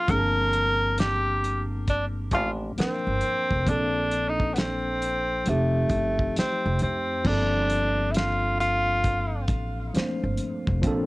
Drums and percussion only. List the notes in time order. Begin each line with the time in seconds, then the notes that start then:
0.08 kick, closed hi-hat
0.53 closed hi-hat
0.98 snare, closed hi-hat
1.44 closed hi-hat
1.87 kick, closed hi-hat
2.31 kick, closed hi-hat
2.78 snare, closed hi-hat
3.21 closed hi-hat
3.51 kick
3.67 kick, closed hi-hat
4.11 closed hi-hat
4.40 kick
4.56 snare, closed hi-hat
5.02 closed hi-hat
5.46 closed hi-hat
5.89 kick, closed hi-hat
6.19 kick
6.36 snare, closed hi-hat
6.79 closed hi-hat
7.25 kick, crash
7.70 closed hi-hat
8.14 snare, closed hi-hat
8.60 closed hi-hat
9.04 kick, closed hi-hat
9.48 kick, closed hi-hat
9.94 snare, closed hi-hat
10.37 closed hi-hat
10.67 kick
10.83 kick, closed hi-hat